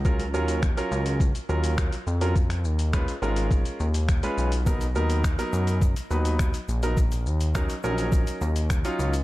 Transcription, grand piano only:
0.05 0.22 F#3 medium
0.05 0.23 C#4 medium
0.05 0.23 F4 medium
0.05 0.23 A#4 medium
0.34 0.60 F#3 medium
0.34 0.60 C#4 medium
0.34 0.60 F4 medium
0.34 0.60 A#4 loud
0.77 1.21 F#3 medium
0.77 1.21 C#4 medium
0.77 1.21 F4 medium
0.77 1.21 A#4 loud
1.49 1.93 F#3 medium
1.49 1.93 C#4 medium
1.49 1.93 F4 medium
1.49 1.93 A#4 medium
2.21 2.36 F#3 medium
2.21 2.36 C#4 medium
2.21 2.36 F4 medium
2.21 2.36 A#4 medium
2.93 3.11 G#3 medium
2.93 3.11 C#4 medium
2.93 3.11 F4 medium
2.93 3.11 B4 medium
3.22 3.84 G#3 medium
3.22 3.84 C#4 medium
3.22 3.84 F4 medium
3.22 3.84 A#4 loud
4.23 4.50 G#3 medium
4.23 4.50 C#4 medium
4.23 4.50 F4 medium
4.23 4.50 B4 loud
4.66 4.84 F#3 medium
4.66 4.84 B3 medium
4.66 4.84 D#4 medium
4.66 4.84 A#4 medium
4.95 5.22 F#3 medium
4.95 5.22 B3 medium
4.95 5.22 D#4 medium
4.95 5.22 A#4 loud
5.38 5.82 F#3 medium
5.38 5.82 B3 medium
5.38 5.83 D#4 medium
5.38 5.83 A#4 loud
6.10 6.54 F#3 medium
6.10 6.55 B3 medium
6.10 6.55 D#4 medium
6.10 6.55 B4 medium
6.83 6.97 F#3 medium
6.83 6.97 B3 medium
6.83 6.97 D#4 medium
6.83 6.97 A#4 medium
7.55 7.72 F#3 medium
7.55 7.72 C#4 medium
7.55 7.73 D#4 medium
7.55 7.73 A#4 medium
7.84 8.45 F#3 medium
7.84 8.45 C#4 medium
7.84 8.45 D#4 medium
7.84 8.45 A#4 loud
8.84 9.11 F#3 medium
8.84 9.11 C#4 medium
8.84 9.11 D#4 medium
8.84 9.11 F4 loud

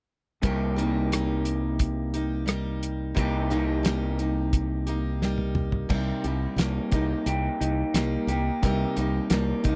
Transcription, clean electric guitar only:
0.42 3.14 C3 medium
0.42 3.15 G3 medium
0.42 3.16 A#3 medium
0.42 3.16 D#4 medium
0.42 3.17 G4 medium
3.15 5.87 C3 medium
3.15 5.88 G3 medium
3.15 5.88 A#3 medium
3.15 5.88 D#4 loud
3.15 5.89 G4 loud
5.90 7.61 C3 medium
6.25 8.96 G3 medium
6.58 7.93 A#3 medium
6.94 7.60 D#4 medium
7.27 8.28 G4 medium
7.60 9.64 D#4 medium
7.94 9.29 A#3 medium
8.29 9.76 G4 medium
8.62 9.76 C3 medium
8.97 9.76 G3 medium
9.30 9.76 A#3 medium
9.64 9.76 D#4 medium

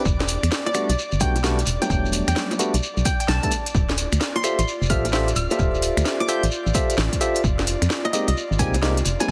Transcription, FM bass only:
0.05 0.37 E1 loud
0.43 0.49 E2 medium
0.89 0.95 B1 medium
1.12 1.22 G1 medium
1.21 1.63 B1 loud
1.67 1.78 E1 medium
1.90 2.22 E1 loud
2.28 2.34 E2 medium
2.74 2.80 B1 medium
2.97 3.03 B1 medium
3.28 3.39 B1 loud
3.75 4.06 D1 loud
4.12 4.19 D2 medium
4.59 4.65 A1 medium
4.82 4.92 F1 medium
4.90 5.33 A1 loud
5.36 5.47 D1 medium
5.59 5.91 D1 loud
5.97 6.03 D2 medium
6.43 6.49 A1 medium
6.66 6.72 A1 medium
6.98 7.09 A1 loud
7.44 7.76 F1 loud
7.82 7.88 F2 loud
8.28 8.34 C2 medium
8.51 8.61 G#1 medium
8.59 9.02 C2 loud
9.06 9.17 F1 medium

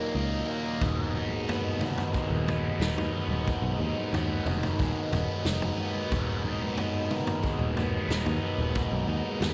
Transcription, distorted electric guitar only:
0.00 1.66 D#2 medium
0.00 1.81 D#3 medium
0.00 0.81 F#3 medium
0.00 0.47 A#3 medium
0.00 0.15 D#4 medium
0.15 1.14 D#4 medium
0.48 0.81 A#3 medium
0.80 2.47 G#2 medium
1.15 2.79 D#4 medium
1.48 2.46 B3 medium
1.81 4.47 D#3 medium
2.13 4.81 G#3 medium
2.47 3.14 B3 medium
2.80 3.80 D#4 medium
3.14 4.14 B3 medium
3.48 5.13 G#2 medium
3.80 5.47 D#4 medium
4.15 5.14 B3 medium
4.48 7.10 D#3 medium
4.81 7.43 G#3 medium
5.14 5.79 B3 medium
5.47 6.44 D#4 medium
5.79 6.77 B3 medium
6.14 7.78 G#2 medium
6.45 8.09 D#4 medium
6.77 7.75 B3 medium
7.10 9.54 D#3 medium
7.44 9.09 G#3 medium
7.76 8.40 B3 medium
8.09 9.07 D#4 medium
8.42 9.40 B3 medium
8.75 9.54 G#2 medium
9.09 9.54 D#4 medium
9.42 9.54 B3 medium

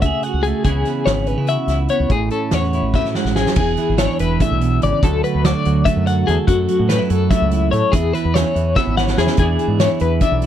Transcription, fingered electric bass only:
0.00 0.11 C#2 medium
0.34 0.52 C#2 medium
0.65 0.83 C#2 medium
1.06 1.34 G#1 medium
1.37 1.56 C#3 medium
1.67 1.86 C#2 medium
2.00 2.09 C#2 medium
2.09 2.28 A1 medium
2.52 2.80 E2 medium
2.82 3.01 A1 medium
3.25 3.43 A1 medium
3.56 3.75 E1 medium
3.89 4.07 G#1 medium
4.20 4.38 E1 medium
4.51 4.78 B1 medium
4.84 4.92 G#1 loud
5.03 5.21 D2 loud
5.35 5.52 D2 medium
5.66 5.84 D2 medium
5.97 6.23 F#2 medium
6.29 6.37 E2 loud
6.48 6.66 F#2 medium
6.80 6.97 A2 medium
7.10 7.28 F#2 medium
7.42 7.69 C#2 medium
7.73 7.82 A2 loud
7.93 8.11 E2 medium
8.25 8.43 E2 medium
8.55 8.74 E2 medium
8.87 9.14 G#1 medium
9.18 9.27 E2 loud
9.38 9.56 E2 medium
9.68 9.87 G#2 medium
10.01 10.19 E2 medium
10.32 10.46 B1 medium

